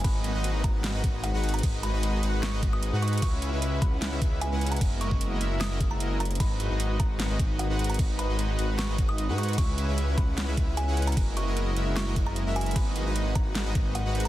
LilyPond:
<<
  \new Staff \with { instrumentName = "Kalimba" } { \time 4/4 \key gis \minor \tempo 4 = 151 b''8. r8. ais''8. r8. fis''8. ais''16~ | ais''8 b''8. r8. cis'''8. dis'''8. cis'''8 | cis'''8. r8. b''8. r8. gis''8. ais''16~ | ais''8 cis'''8. r8. dis'''8. ais''8. ais''8 |
b''8. r8. ais''8. r8. fis''8. ais''16~ | ais''8 b''8. r8. cis'''8. dis'''8. cis'''8 | cis'''8. r8. b''8. r8. gis''8. ais''16~ | ais''8 cis'''8. r8. cis'''8. ais''8. gis''8 |
b''8. r8. ais''8. r8. fis''8. ais''16 | }
  \new Staff \with { instrumentName = "Supersaw synth" } { \time 4/4 \key gis \minor <gis dis' fis' b' dis''>8. <gis dis' fis' b' dis''>8. <gis dis' fis' fis''>8. <gis dis' fis' b' dis''>16 <gis dis' fis' b' dis''>8 r16 <gis dis' fis' b' fis''>8. | <gis dis' fis' dis''>8. <gis dis' fis' b' dis''>8. <gis dis' fis' b' fis''>8. <gis dis' fis' b' dis''>16 <dis' fis' b' dis''>8 r16 <gis dis' fis' b' fis''>8. | <gis cis' e' b' e''>8. <gis cis' e' b' e''>8. <e' b'>8. <gis cis' e' b' e''>16 <gis e' b' e''>8 r16 <gis cis' e' b' fis''>8. | <gis e' fis' dis''>8. r8. <gis e' fis' ais' e''>8. <gis e' fis' ais' dis''>16 r16 <gis e' fis' ais' e''>16 <gis e' fis' ais' dis''>8 r8 |
<gis dis' fis' b' dis''>8. <gis dis' fis' b' dis''>8. r8. <gis dis' fis' b' dis''>16 r8. <gis dis' fis' b' fis''>8. | <dis' fis' b' dis''>8. <gis dis' fis' b' dis''>8. <gis dis' fis' b' fis''>8. <gis dis' fis' b' dis''>16 <gis dis' fis' b' dis''>8 r16 <gis dis' fis' b' fis''>8. | <gis cis' e' e''>8. <gis cis' e' b' e''>8. cis'8. <gis cis' e' b' e''>16 <gis e' b'>8 r16 <gis cis' e' b' fis''>8. | <gis e' fis' ais' dis''>8. <gis e' fis' ais' dis''>8. <gis e' fis' ais' e''>8. <gis e' fis' ais' dis''>16 <gis e' fis' ais' dis''>8 r16 <gis e' fis' ais' e''>8. |
fis'8. <gis dis' fis' b' dis''>8. r8. <gis dis' fis' b' dis''>16 r8. <gis dis' fis' b' fis''>8. | }
  \new Staff \with { instrumentName = "Ambient pad" } { \time 4/4 \key gis \minor << { b'1~ | b'1 | e'1~ | e'1 |
b'1~ | b'1 | e'1~ | e'1 |
b'1 | } \\ { <gis fis'>1~ | <gis fis'>1 | <cis b>1 | <fis ais>1 |
<gis fis'>1~ | <gis fis'>1 | <cis b>1 | <fis ais>1 |
<gis fis'>1 | } >> }
  \new Staff \with { instrumentName = "Detuned saw bass" } { \clef bass \time 4/4 \key gis \minor gis,,8. gis,,8. gis,,8. gis,,16 gis,,8. gis,,8. | gis,,8. gis,,8. gis,,8. gis,,16 gis,,8. gis,8. | cis,8. cis,8. cis,8. cis,16 cis,8. cis,8. | fis,,8. fis,,8. fis,,8. fis,,8 fis,,16 fis,,4 |
gis,,8. gis,,8. gis,,8. gis,,16 gis,,8. gis,,8. | gis,,8. gis,,8. gis,,8. gis,,16 gis,,8. gis,8. | cis,8. cis,8. cis,8. cis,16 cis,8. cis,8. | fis,,8. fis,,8. fis,,8. fis,,16 fis,,8. fis,,8. |
gis,,8. gis,,8. gis,,8. gis,,16 gis,,8. gis,,8. | }
  \new DrumStaff \with { instrumentName = "Drums" } \drummode { \time 4/4 <cymc hh bd>8 hh8 hh8 <hh bd>8 <cymc hh sn>8 <hh bd>8 hh8 hh32 hh32 hh32 hh32 | <cymc hh bd>8 hh8 hh8 hh8 <cymc hh sn>8 <hh bd>8 hh8 hh32 hh32 hh32 hh32 | <cymc hh bd>8 hh8 hh8 <hh bd>8 <cymc hh sn>8 <hh bd>8 hh8 hh32 hh32 hh32 hh32 | <cymc hh bd>8 hh16 bd16 hh8 hh8 <cymc hh sn>8 <hh bd>8 hh8 hh32 hh32 hh32 hh32 |
<cymc hh bd>8 hh8 hh8 <hh bd>8 <cymc hh sn>8 <hh bd>8 hh8 hh32 hh32 hh32 hh32 | <cymc hh bd>8 hh8 hh8 hh8 <cymc hh sn>8 <hh bd>8 hh8 hh32 hh32 hh32 hh32 | <cymc hh bd>8 hh8 hh8 <hh bd>8 <cymc hh sn>8 <hh bd>8 hh8 hh32 hh32 hh32 hh32 | <cymc hh bd>8 hh8 hh8 hh8 <cymc hh sn>8 <hh bd>8 hh8 hh32 hh32 hh32 hh32 |
<cymc hh bd>8 hh8 hh8 <hh bd>8 <cymc hh sn>8 <hh bd>8 hh8 hh32 hh32 hh16 | }
>>